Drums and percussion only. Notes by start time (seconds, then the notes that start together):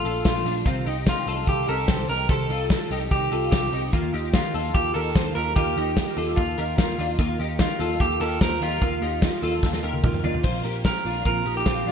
0.04 open hi-hat
0.25 kick, snare, closed hi-hat
0.46 open hi-hat
0.66 kick, closed hi-hat
0.86 open hi-hat
1.06 kick, snare, closed hi-hat
1.27 open hi-hat
1.47 kick, closed hi-hat
1.67 open hi-hat
1.88 kick, snare, closed hi-hat
2.08 open hi-hat
2.29 kick, closed hi-hat
2.50 open hi-hat
2.70 kick, snare, closed hi-hat
2.91 open hi-hat
3.11 kick, closed hi-hat
3.32 open hi-hat
3.52 kick, snare, closed hi-hat
3.73 open hi-hat
3.93 kick, closed hi-hat
4.14 open hi-hat
4.33 kick, snare, closed hi-hat
4.55 open hi-hat
4.75 kick, closed hi-hat
4.95 open hi-hat
5.15 kick, snare, closed hi-hat
5.36 open hi-hat
5.56 kick, closed hi-hat
5.77 open hi-hat
5.97 kick, snare, closed hi-hat
6.18 open hi-hat
6.37 kick, closed hi-hat
6.58 open hi-hat
6.78 kick, snare, closed hi-hat
6.99 open hi-hat
7.19 kick, closed hi-hat
7.39 open hi-hat
7.59 kick, snare, closed hi-hat
7.80 open hi-hat
8.00 kick, closed hi-hat
8.20 open hi-hat
8.41 kick, snare, closed hi-hat
8.62 open hi-hat
8.81 kick, closed hi-hat
9.02 open hi-hat
9.22 kick, snare, closed hi-hat
9.43 open hi-hat
9.63 kick, snare
9.73 snare
9.93 high tom
10.04 kick, mid tom
10.14 mid tom
10.24 floor tom
10.34 floor tom
10.44 kick, crash
10.65 open hi-hat
10.85 kick, snare, closed hi-hat
11.06 open hi-hat
11.25 kick, closed hi-hat
11.45 open hi-hat
11.66 kick, snare, closed hi-hat
11.86 open hi-hat